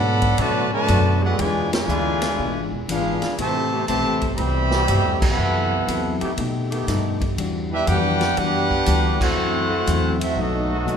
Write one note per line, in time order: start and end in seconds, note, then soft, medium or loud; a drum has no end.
0.00 0.37 G#2 loud
0.00 0.24 B2 medium
0.00 0.37 D3 medium
0.00 0.38 F#3 medium
0.00 0.24 A3 medium
0.00 0.38 B3 medium
0.00 0.25 D4 medium
0.00 0.25 F#4 medium
0.00 0.40 A4 loud
0.00 0.39 D5 loud
0.00 0.40 F#5 loud
0.00 0.40 B5 loud
0.22 kick medium
0.22 ride medium
0.38 0.87 A2 medium
0.38 0.74 B2 medium
0.38 0.72 D3 medium
0.38 0.62 D3 loud
0.38 0.72 F#3 medium
0.38 0.71 A3 loud
0.38 0.62 A3 medium
0.38 0.75 A3 medium
0.38 0.62 B3 medium
0.38 0.75 D4 medium
0.38 0.62 F#4 loud
0.38 0.73 F#4 loud
0.38 0.75 F#4 medium
0.38 0.72 B4 loud
0.38 0.72 D5 loud
0.38 0.73 A5 loud
0.38 kick soft
0.38 ride medium
0.72 1.20 D3 medium
0.72 1.19 F#3 medium
0.72 1.19 A3 medium
0.72 1.20 F#4 loud
0.72 1.20 B4 loud
0.72 1.20 D5 loud
0.72 1.20 A5 loud
0.88 1.37 F#2 loud
0.88 1.24 B2 medium
0.88 1.24 A3 medium
0.88 1.24 D4 medium
0.88 1.25 F#4 medium
0.88 kick soft
0.88 hi-hat pedal medium
0.88 ride medium
1.21 1.85 E3 loud
1.21 1.85 G#3 loud
1.21 1.39 A3 medium
1.21 1.85 D4 loud
1.21 1.39 D4 medium
1.21 1.40 D4 medium
1.21 1.39 F#4 medium
1.21 1.85 G#4 loud
1.21 1.39 A4 medium
1.21 1.39 B4 medium
1.21 1.40 F#5 medium
1.38 1.87 E2 medium
1.38 1.71 B2 medium
1.38 1.71 D3 medium
1.38 1.74 E3 medium
1.38 1.71 G#3 medium
1.38 1.74 G#3 medium
1.38 1.75 D4 medium
1.38 1.73 F4 medium
1.38 1.76 F4 medium
1.38 1.73 B4 medium
1.38 1.73 D5 medium
1.38 1.73 G#5 loud
1.38 kick soft
1.38 ride medium
1.72 2.68 B2 medium
1.72 2.68 D3 medium
1.72 2.68 G#3 medium
1.72 2.69 F4 medium
1.72 2.69 B4 medium
1.72 2.69 D5 medium
1.72 2.69 G#5 loud
1.72 snare medium
1.72 ride medium
1.88 2.37 D2 loud
1.88 2.24 E3 medium
1.88 2.65 E3 loud
1.88 2.65 G#3 medium
1.88 2.24 G#3 medium
1.88 2.65 D4 loud
1.88 2.25 D4 medium
1.88 2.66 F4 loud
1.88 2.25 F4 medium
1.88 hi-hat pedal medium
2.22 snare medium
2.22 ride medium
2.38 2.55 B1 medium
2.38 2.74 E3 medium
2.38 2.74 G#3 medium
2.38 2.75 D4 medium
2.38 2.75 F4 medium
2.38 kick soft
2.55 2.71 G#1 medium
2.72 2.88 E1 medium
2.89 3.20 G#1 medium
2.89 3.24 E3 medium
2.89 3.25 G#3 medium
2.89 3.35 B3 medium
2.89 3.35 D4 medium
2.89 3.36 D4 medium
2.89 3.25 D4 medium
2.89 3.35 F4 medium
2.89 3.26 F4 medium
2.89 3.36 G#4 medium
2.89 3.36 B4 medium
2.89 3.37 F5 medium
2.89 kick soft
2.89 hi-hat pedal medium
2.89 ride medium
3.22 muted upright bass stroke soft
3.22 snare medium
3.22 ride medium
3.36 3.87 A1 medium
3.36 3.84 C3 medium
3.36 3.84 E3 medium
3.36 3.84 A3 medium
3.36 3.74 A3 medium
3.36 3.75 C4 medium
3.36 3.86 G4 medium
3.36 3.86 E5 medium
3.36 kick soft
3.36 ride medium
3.41 3.75 G4 medium
3.41 3.75 B4 medium
3.41 3.86 C5 medium
3.41 3.86 A5 loud
3.73 3.84 C3 medium
3.73 3.84 A3 medium
3.73 3.84 B3 medium
3.73 3.84 G4 loud
3.87 4.05 B1 medium
3.87 4.30 C3 medium
3.87 4.30 E3 medium
3.87 4.30 A3 medium
3.87 4.24 A3 medium
3.87 4.24 C4 medium
3.87 4.30 G4 loud
3.87 4.25 G4 medium
3.87 4.31 C5 medium
3.87 4.30 E5 medium
3.87 4.31 A5 loud
3.87 kick soft
3.87 hi-hat pedal medium
3.87 ride medium
3.91 4.25 B4 medium
4.05 4.21 A1 medium
4.21 4.37 G1 medium
4.21 kick medium
4.21 ride medium
4.35 4.87 C2 loud
4.35 5.21 B2 medium
4.35 5.18 E3 loud
4.35 5.20 G3 medium
4.35 4.74 A3 medium
4.35 5.22 G4 loud
4.35 5.22 C5 loud
4.35 5.20 E5 loud
4.35 4.39 A#5 medium
4.35 5.19 B5 loud
4.35 kick soft
4.35 ride medium
4.40 4.74 C4 medium
4.40 4.75 G4 medium
4.40 4.75 B4 medium
4.71 5.35 B2 loud
4.71 5.35 G3 loud
4.71 5.35 A3 medium
4.71 5.36 G4 loud
4.71 snare medium
4.88 5.04 G2 loud
4.88 5.24 A3 medium
4.88 5.24 C4 medium
4.88 5.25 G4 medium
4.88 5.25 B4 medium
4.88 kick soft
4.88 hi-hat pedal medium
4.88 ride medium
5.04 5.20 E2 medium
5.20 5.37 C2 medium
5.20 6.17 C3 medium
5.20 6.17 E3 medium
5.20 6.17 B3 medium
5.20 6.17 A4 medium
5.20 6.17 E5 loud
5.20 6.17 F#5 loud
5.20 6.17 B5 medium
5.20 kick loud
5.20 crash medium
5.37 5.87 F#2 medium
5.37 5.73 F#3 soft
5.37 5.74 C4 medium
5.37 5.74 E4 medium
5.37 5.75 A4 medium
5.87 6.20 E2 loud
5.87 6.23 F#3 medium
5.87 6.24 C4 medium
5.87 6.24 E4 medium
5.87 6.24 A4 medium
5.87 kick soft
5.87 hi-hat pedal soft
5.87 ride medium
6.20 6.32 D#3 loud
6.20 6.32 A3 medium
6.20 6.32 B3 loud
6.20 6.32 G4 loud
6.20 muted upright bass stroke soft
6.20 ride medium
6.37 6.73 B2 medium
6.37 6.86 B2 loud
6.37 6.73 A3 medium
6.37 6.74 D#4 medium
6.37 6.75 G4 medium
6.37 kick soft
6.37 ride medium
6.70 7.34 D#3 loud
6.70 7.34 A3 loud
6.70 7.34 B3 medium
6.70 7.34 G4 loud
6.70 ride medium
6.87 7.36 G2 medium
6.87 7.23 B2 medium
6.87 7.23 A3 medium
6.87 7.24 D#4 medium
6.87 7.24 G4 medium
6.87 kick soft
6.87 snare soft
6.87 hi-hat pedal medium
6.87 ride medium
7.21 kick medium
7.21 ride medium
7.37 7.86 E2 medium
7.37 7.73 E3 medium
7.37 7.73 G3 medium
7.37 7.74 D4 medium
7.37 7.74 F#4 medium
7.37 kick soft
7.37 ride medium
7.70 7.86 G3 medium
7.70 7.85 B3 medium
7.70 7.86 D4 medium
7.70 7.86 E4 medium
7.70 7.87 G4 medium
7.70 7.86 B4 medium
7.70 7.87 E5 loud
7.86 8.36 F2 medium
7.86 8.22 E3 medium
7.86 8.64 E3 medium
7.86 8.64 G3 loud
7.86 8.23 G3 medium
7.86 8.35 B3 medium
7.86 8.35 D4 medium
7.86 8.36 D4 loud
7.86 8.64 D4 medium
7.86 8.23 D4 medium
7.86 8.24 F#4 medium
7.86 8.35 G4 medium
7.86 8.64 G4 loud
7.86 8.36 B4 loud
7.86 8.36 F#5 loud
7.86 8.37 G5 loud
7.86 kick soft
7.86 hi-hat pedal medium
7.86 ride medium
8.21 snare medium
8.21 ride medium
8.36 8.86 F#2 medium
8.36 8.72 E3 medium
8.36 8.73 G3 medium
8.36 9.20 B3 medium
8.36 9.20 D4 loud
8.36 9.21 D4 loud
8.36 8.74 D4 medium
8.36 9.20 G4 medium
8.36 9.21 G4 loud
8.36 9.21 B4 loud
8.36 9.21 F#5 loud
8.36 kick soft
8.36 ride medium
8.40 8.74 F#4 medium
8.71 kick soft
8.86 9.36 D2 loud
8.86 9.22 E3 medium
8.86 9.23 G3 medium
8.86 9.23 D4 medium
8.86 9.23 F#4 medium
8.86 kick soft
8.86 hi-hat pedal medium
8.86 ride medium
9.20 10.16 A3 medium
9.20 10.16 C4 medium
9.20 10.17 E4 loud
9.20 10.16 F#4 medium
9.20 10.17 A4 medium
9.20 10.17 C5 medium
9.20 10.17 F#5 loud
9.20 kick medium
9.20 crash medium
9.36 9.85 F#2 medium
9.36 9.72 F#2 medium
9.36 9.72 E3 medium
9.36 9.73 A3 medium
9.36 9.73 C4 medium
9.69 9.80 E3 loud
9.69 9.81 A3 loud
9.69 9.81 C4 medium
9.69 9.81 F#4 loud
9.87 10.36 E2 medium
9.87 10.22 F#2 medium
9.87 10.22 E3 medium
9.87 10.23 A3 medium
9.87 10.23 C4 medium
9.87 kick soft
9.87 hi-hat pedal medium
9.87 ride medium
10.20 10.36 A3 medium
10.20 10.36 C4 medium
10.20 10.38 C4 medium
10.20 10.36 E4 medium
10.20 10.38 F#4 medium
10.20 10.38 A4 medium
10.20 10.38 E5 loud
10.20 ride medium
10.37 10.85 B1 loud
10.37 10.72 B2 medium
10.37 10.97 F#3 medium
10.37 10.73 F#3 medium
10.37 10.97 A3 medium
10.37 10.73 A3 medium
10.37 10.97 B3 medium
10.37 10.97 D#4 medium
10.37 10.73 D#4 medium
10.37 10.97 F#4 medium
10.37 10.97 A4 medium
10.37 10.97 D#5 medium
10.37 kick soft
10.70 10.97 D#3 medium
10.70 10.97 A3 loud
10.70 10.97 B3 medium
10.70 10.97 F#4 loud
10.86 10.97 D#2 medium
10.86 10.97 B2 medium
10.86 10.97 F#3 medium
10.86 10.97 A3 medium
10.86 10.97 D#4 medium
10.86 hi-hat pedal medium